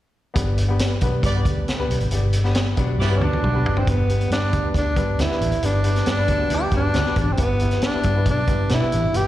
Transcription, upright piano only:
0.34 0.57 B3 medium
0.34 0.57 D4 medium
0.34 0.58 G4 medium
0.34 0.58 B4 medium
0.68 0.91 B3 medium
0.68 0.91 D4 medium
0.68 0.92 G4 medium
0.68 0.92 B4 medium
1.02 1.24 B3 medium
1.02 1.24 D4 medium
1.02 1.25 G4 medium
1.02 1.25 B4 medium
1.35 1.65 B3 medium
1.35 1.65 D4 medium
1.35 1.66 G4 medium
1.35 1.66 B4 medium
1.78 2.01 B3 medium
1.78 2.01 D4 medium
1.78 2.02 G4 medium
1.78 2.02 B4 medium
2.11 2.34 B3 medium
2.11 2.34 D4 medium
2.11 2.35 G4 medium
2.11 2.35 D5 medium
2.44 2.67 B3 medium
2.44 2.67 D4 medium
2.44 2.67 G4 medium
2.44 2.68 B4 medium
2.76 2.99 B3 medium
2.76 3.00 D4 medium
2.76 3.00 G4 medium
2.76 3.00 B4 medium
3.09 3.40 B3 medium
3.09 3.40 D4 medium
3.09 3.41 G4 medium
3.09 3.41 B4 medium
3.53 3.76 B3 medium
3.53 3.77 D4 medium
3.53 3.77 G4 medium
3.53 3.77 B4 medium
3.87 4.02 B3 medium
3.87 4.02 D4 medium
3.87 4.03 G4 medium
3.87 4.03 B4 medium
4.08 4.32 B3 medium
4.08 4.32 D4 medium
4.08 4.32 G4 medium
4.08 4.33 B4 medium
4.41 4.57 B3 medium
4.41 4.57 D4 medium
4.41 4.57 G4 medium
4.41 4.58 B4 medium
4.63 4.86 B3 medium
4.63 4.87 D4 medium
4.63 4.87 G4 medium
4.63 4.87 B4 medium
4.96 5.19 B3 medium
4.96 5.20 D4 medium
4.96 5.20 G4 medium
4.96 5.20 B4 medium
5.29 5.52 B3 medium
5.29 5.53 D4 medium
5.29 5.53 G4 medium
5.29 5.53 B4 medium
5.63 5.78 B3 medium
5.63 5.78 D4 medium
5.63 5.79 G4 medium
5.63 5.79 B4 medium
5.84 6.07 B3 medium
5.84 6.08 D4 medium
5.84 6.08 G4 medium
5.84 6.08 B4 medium
6.17 6.33 B3 medium
6.17 6.33 D4 medium
6.17 6.33 G4 medium
6.17 6.33 B4 medium
6.38 6.62 B3 medium
6.38 6.62 D4 medium
6.38 6.63 G4 medium
6.38 6.63 B4 medium
6.72 6.95 B3 medium
6.72 6.95 D4 medium
6.72 6.96 G4 medium
6.72 6.96 B4 medium
7.05 7.28 B3 medium
7.05 7.29 D4 medium
7.05 7.29 G4 medium
7.05 7.29 B4 medium
7.38 7.54 B3 medium
7.38 7.54 E4 medium
7.38 7.54 G4 medium
7.38 7.54 B4 medium
7.61 7.84 B3 medium
7.61 7.84 E4 medium
7.61 7.84 G4 medium
7.61 7.85 B4 medium
7.93 8.09 B3 medium
7.93 8.09 E4 medium
7.93 8.09 G4 medium
7.93 8.09 B4 medium
8.15 8.38 B3 medium
8.15 8.38 E4 medium
8.15 8.39 G4 medium
8.15 8.39 B4 medium
8.47 8.71 B3 medium
8.47 8.71 E4 medium
8.47 8.72 G4 medium
8.47 8.72 B4 medium
8.80 9.04 B3 medium
8.80 9.04 E4 medium
8.80 9.04 G4 medium
8.80 9.04 B4 medium
9.13 9.27 B3 medium
9.13 9.27 E4 medium
9.13 9.27 G4 medium
9.13 9.27 B4 medium

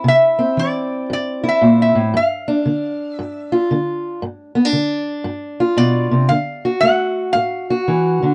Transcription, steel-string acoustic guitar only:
0.00 1.42 E4 medium
0.04 0.53 C3 medium
0.39 2.11 C4 medium
0.57 1.06 E3 medium
1.10 1.58 G2 medium
1.44 2.14 E4 medium
1.61 1.95 A#2 medium
1.95 2.13 A2 medium
2.14 2.62 G2 medium
2.48 4.55 D4 medium
2.66 3.14 D3 medium
3.19 3.67 G2 medium
3.52 4.20 F4 medium
3.71 4.19 D3 medium
4.22 4.71 G2 medium
4.55 4.65 B3 medium
4.65 6.30 D4 medium
4.73 5.22 D3 medium
5.24 5.74 G2 medium
5.60 6.28 F4 medium
5.77 6.11 B2 medium
6.11 6.30 C3 medium
6.30 6.79 D3 medium
6.65 7.69 F#4 medium
6.83 7.31 A3 medium
7.35 7.84 A2 medium
7.70 8.34 F#4 medium
7.88 8.21 E3 medium
8.23 8.34 D3 medium

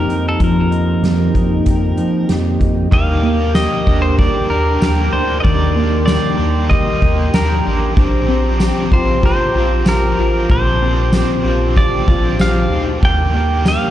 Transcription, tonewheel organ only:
0.00 2.88 F3 medium
0.00 2.88 A#3 medium
0.00 2.88 C4 medium
0.00 2.88 D#4 medium
0.00 2.88 G4 medium
2.93 7.94 G4 medium
2.93 7.94 A#4 medium
2.93 7.94 G5 medium
2.93 5.43 D6 medium
5.46 7.96 C6 medium
7.97 12.99 G4 medium
7.97 12.99 C5 medium
7.97 10.47 A#5 medium
7.97 13.90 D6 medium
10.50 13.00 A5 medium
13.03 13.90 A#3 medium
13.03 13.90 G4 medium
13.03 13.90 G5 medium

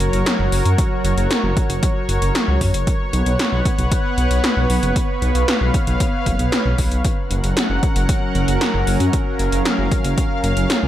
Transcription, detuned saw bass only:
0.00 0.09 F#1 medium
0.13 0.22 F#1 medium
0.39 0.48 F#1 medium
0.52 0.61 F#1 medium
0.65 0.75 F#2 medium
1.04 1.14 F#1 medium
1.17 1.27 F#1 medium
1.44 1.53 F#1 medium
1.70 1.79 F#1 medium
2.09 2.18 F#1 loud
2.22 2.31 F#1 medium
2.48 2.57 C#2 medium
2.61 2.70 F#2 medium
2.74 2.83 F#1 medium
3.13 3.22 B1 medium
3.26 3.36 B1 medium
3.52 3.62 B1 medium
3.79 3.88 B1 medium
4.18 4.27 B1 loud
4.31 4.40 B1 medium
4.57 4.66 B1 medium
4.70 4.79 B1 medium
4.83 4.92 F#1 medium
5.22 5.31 B1 medium
5.35 5.44 B1 medium
5.61 5.70 B1 medium
5.87 5.96 B1 medium
6.26 6.36 F#1 medium
6.39 6.49 B1 medium
6.65 6.75 B1 medium
6.79 6.88 B1 medium
6.91 7.01 B1 medium
7.31 7.40 F#1 medium
7.44 7.53 F#1 medium
7.70 7.79 F#1 medium
7.96 8.05 F#1 medium
8.35 8.44 F#1 loud
8.48 8.57 F#1 medium
8.74 8.83 F#1 medium
8.87 8.96 F#1 medium
9.00 9.09 F#2 medium
9.39 9.49 F#1 loud
9.52 9.62 F#1 medium
9.79 9.88 F#1 medium
10.05 10.14 F#1 medium
10.44 10.53 F#1 loud
10.57 10.66 F#1 medium
10.83 10.88 C#2 medium

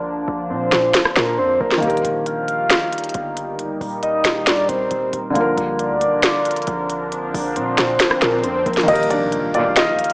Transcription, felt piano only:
0.00 1.76 D3 medium
0.00 1.78 A#3 medium
0.00 1.79 F4 medium
0.00 1.81 A#4 medium
1.77 5.29 D#3 medium
1.77 5.30 A#3 medium
1.84 5.32 G4 medium
1.84 5.34 A#4 medium
5.30 8.82 D3 medium
5.30 8.83 A#3 medium
5.37 8.85 F4 medium
5.37 8.87 A#4 medium
8.83 10.13 D#3 medium
8.83 10.13 A#3 medium
8.90 10.13 G4 medium
8.90 10.13 A#4 medium

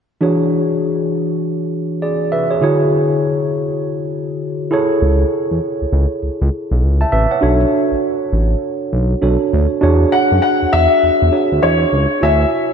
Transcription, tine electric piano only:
0.21 2.57 E3 medium
0.21 2.58 D4 medium
0.21 2.58 F#4 medium
0.21 1.99 G#4 medium
0.21 1.99 C#5 medium
2.02 2.31 G#4 medium
2.02 2.31 D5 medium
2.32 2.50 B4 medium
2.32 2.50 E5 medium
2.51 2.62 G#4 medium
2.51 2.62 C#5 medium
2.61 4.68 D3 medium
2.61 4.68 E4 medium
2.61 4.68 F#4 medium
2.61 4.68 G#4 medium
2.61 4.69 C#5 medium
4.71 7.08 E4 medium
4.71 7.08 G#4 medium
4.71 7.08 A4 medium
4.71 6.79 C#5 medium
7.01 7.11 E5 medium
7.01 7.12 A5 medium
7.12 7.30 B4 medium
7.12 7.30 E5 medium
7.31 7.42 C#5 medium
7.31 7.60 F#5 medium
7.41 9.18 D4 medium
7.41 9.18 F#4 medium
7.41 9.19 A4 medium
7.41 9.19 C#5 medium
9.21 9.80 D4 medium
9.21 9.80 F#4 soft
9.21 9.82 A4 medium
9.21 9.82 C#5 medium
9.81 11.29 D4 medium
9.81 11.29 F#4 medium
9.81 11.29 G#4 medium
9.81 11.30 C#5 medium
11.32 12.22 D4 medium
11.32 12.21 F#4 soft
11.32 12.22 G#4 soft
11.32 12.22 C#5 medium
12.21 12.73 E4 medium
12.21 12.73 F#4 medium
12.21 12.73 C#5 medium
12.21 12.73 G#5 medium

